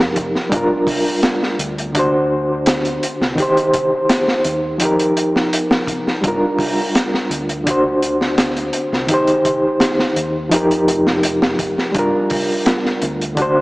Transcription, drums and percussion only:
0.00 snare
0.16 kick, closed hi-hat
0.35 snare
0.52 kick, closed hi-hat
0.87 kick, open hi-hat
1.23 snare, closed hi-hat
1.43 snare
1.59 closed hi-hat
1.78 closed hi-hat
1.95 kick, closed hi-hat
2.66 snare, closed hi-hat
2.85 closed hi-hat
3.03 closed hi-hat
3.22 snare
3.38 kick, closed hi-hat
3.57 closed hi-hat
3.74 kick, closed hi-hat
4.09 snare, closed hi-hat
4.28 snare
4.44 closed hi-hat
4.80 closed hi-hat
4.99 closed hi-hat
5.17 closed hi-hat
5.36 snare
5.53 closed hi-hat
5.71 snare
5.87 kick, closed hi-hat
6.07 snare
6.24 kick, closed hi-hat
6.59 kick, open hi-hat
6.95 snare, closed hi-hat
7.14 snare
7.31 closed hi-hat
7.49 closed hi-hat
7.67 kick, closed hi-hat
8.03 closed hi-hat
8.21 snare
8.38 snare, closed hi-hat
8.57 closed hi-hat
8.73 closed hi-hat
8.93 snare
9.09 kick, closed hi-hat
9.27 closed hi-hat
9.45 kick, closed hi-hat
9.80 snare, closed hi-hat
9.99 snare
10.16 closed hi-hat
10.51 closed hi-hat
10.71 closed hi-hat
10.88 closed hi-hat
11.07 snare
11.23 closed hi-hat
11.42 snare
11.59 kick, closed hi-hat
11.78 snare
11.95 kick, closed hi-hat
12.30 kick, open hi-hat
12.66 snare, closed hi-hat
12.85 snare
13.02 closed hi-hat
13.21 closed hi-hat
13.37 kick, closed hi-hat

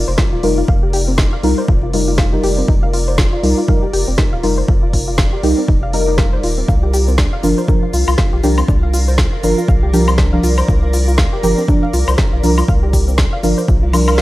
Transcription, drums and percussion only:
0.18 kick, snare
0.43 open hi-hat
0.68 kick
0.93 open hi-hat
1.18 kick, snare
1.43 open hi-hat
1.68 kick
1.93 open hi-hat
2.18 kick, snare
2.43 open hi-hat
2.68 kick
2.93 open hi-hat
3.18 kick, snare
3.43 open hi-hat
3.68 kick
3.93 open hi-hat
4.18 kick, snare
4.43 open hi-hat
4.68 kick
4.93 kick, open hi-hat
5.18 kick, snare
5.43 open hi-hat
5.68 kick
5.93 open hi-hat
6.18 kick, snare
6.43 open hi-hat
6.68 kick, cabasa
6.93 open hi-hat, cabasa
7.08 cabasa
7.18 kick, snare, cabasa
7.43 open hi-hat, cabasa
7.58 cabasa
7.68 kick, cabasa
7.93 open hi-hat, cabasa
8.08 cabasa, high woodblock
8.18 kick, snare, cabasa
8.43 open hi-hat, cabasa
8.58 cabasa, high woodblock
8.68 kick, cabasa
8.93 open hi-hat, cabasa
9.08 cabasa
9.18 kick, snare, cabasa
9.43 open hi-hat, cabasa
9.58 cabasa
9.68 kick, cabasa
9.93 open hi-hat, cabasa
10.08 cabasa, high woodblock
10.18 kick, snare, cabasa
10.43 open hi-hat, cabasa
10.58 cabasa, high woodblock
10.68 kick, cabasa
10.93 open hi-hat, cabasa
11.08 cabasa
11.18 kick, snare, cabasa
11.43 open hi-hat, cabasa
11.58 cabasa
11.68 kick, cabasa
11.93 open hi-hat, cabasa
12.08 cabasa, high woodblock
12.18 kick, snare, cabasa
12.43 open hi-hat, cabasa
12.58 cabasa, high woodblock
12.68 kick, cabasa
12.93 kick, open hi-hat, cabasa
13.08 cabasa
13.18 kick, snare, cabasa
13.43 open hi-hat, cabasa
13.58 cabasa
13.68 kick, cabasa
13.93 open hi-hat, cabasa, high woodblock
14.08 cabasa, high woodblock
14.18 snare

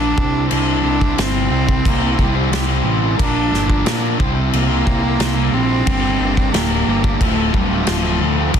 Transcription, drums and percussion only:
0.18 kick
0.51 crash
1.01 kick
1.18 snare, crash
1.69 kick
1.85 kick, crash
2.19 kick
2.53 snare, crash
3.19 kick, crash
3.54 snare
3.70 kick
3.86 snare, crash
4.20 kick
4.53 crash
4.87 kick
5.20 snare, crash
5.87 kick, crash
6.37 kick
6.54 snare, crash
7.04 kick
7.21 kick, crash
7.54 kick
7.87 snare, crash
8.54 kick, crash

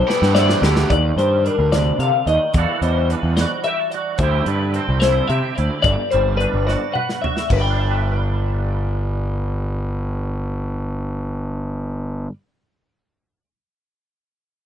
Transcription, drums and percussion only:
0.10 snare
0.23 snare
0.35 snare
0.50 snare
0.63 snare
0.76 snare
0.90 kick, closed hi-hat
1.19 closed hi-hat
1.46 closed hi-hat
1.73 snare, closed hi-hat
2.00 closed hi-hat
2.27 closed hi-hat
2.54 kick, closed hi-hat
2.82 closed hi-hat
3.10 closed hi-hat
3.37 snare, closed hi-hat
3.64 closed hi-hat
3.92 closed hi-hat
4.18 kick, closed hi-hat
4.46 closed hi-hat
4.74 closed hi-hat
5.02 snare, closed hi-hat
5.30 closed hi-hat
5.58 closed hi-hat
5.84 kick, closed hi-hat
6.11 closed hi-hat
6.40 closed hi-hat
6.68 snare
6.95 mid tom
7.09 snare
7.24 floor tom
7.37 snare
7.50 kick, crash

